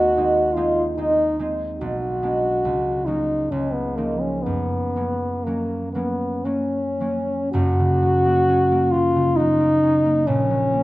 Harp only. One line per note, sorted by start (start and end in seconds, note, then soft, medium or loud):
0.00 1.84 D#2 medium
0.00 0.16 G#3 soft
0.00 0.16 C4 soft
0.00 0.17 D#4 soft
0.17 0.55 G#3 soft
0.17 0.56 C4 soft
0.17 0.56 D#4 soft
0.57 0.97 G#3 soft
0.57 0.97 C4 soft
0.57 0.98 D#4 soft
0.97 1.38 G#3 soft
0.97 1.39 C4 soft
0.97 1.39 D#4 soft
1.39 2.21 G#3 soft
1.39 1.84 C4 soft
1.39 1.84 D#4 soft
1.81 2.69 B1 soft
2.22 2.68 G#3 soft
2.22 2.68 B3 soft
2.22 2.69 D4 soft
2.65 3.51 C#2 soft
3.07 3.55 F#3 soft
3.07 3.97 A#3 soft
3.07 4.96 C#4 soft
3.52 4.50 C#2 soft
3.97 4.50 F3 soft
3.97 4.95 A#3 soft
3.97 4.50 D#4 soft
4.46 7.53 F#2 soft
4.96 5.45 F#3 soft
4.96 5.46 A#3 soft
4.96 5.46 C#4 soft
5.46 5.94 F#3 soft
5.46 5.94 A#3 soft
5.46 5.95 C#4 soft
5.95 6.44 F#3 soft
5.95 6.44 A#3 soft
5.95 6.45 C#4 soft
6.45 6.99 F#3 soft
6.45 6.99 A#3 soft
6.45 7.00 C#4 soft
7.00 8.01 F#3 soft
7.00 8.24 A#3 soft
7.00 8.48 C#4 soft
7.53 10.32 F#1 soft
7.53 10.33 F#2 medium
7.79 9.15 C#3 soft
8.03 8.92 F#3 soft
8.26 8.70 A#3 soft
8.49 9.82 C#4 soft
8.71 9.59 A#3 soft
8.94 9.38 F#3 soft
9.16 10.32 C#3 soft
9.40 10.49 F#3 soft
9.60 10.04 A#3 soft
9.83 10.83 C#4 soft
10.05 10.72 A#3 soft
10.27 10.83 A#1 soft
10.27 10.83 A#2 medium
10.51 10.83 F#3 soft
10.73 10.83 A#3 soft